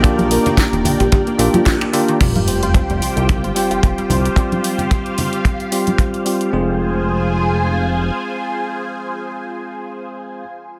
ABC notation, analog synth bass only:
X:1
M:4/4
L:1/16
Q:"Swing 16ths" 1/4=111
K:Fdor
V:1 name="Analog synth bass" clef=bass
B,,,2 z3 E,,, B,,, B,,, z2 B,,, z4 z | F,,,4 z F,,, C,, C,,2 G,,, z F,,, F,,, z C,, z | z16 | F,,,12 z4 |
z16 |]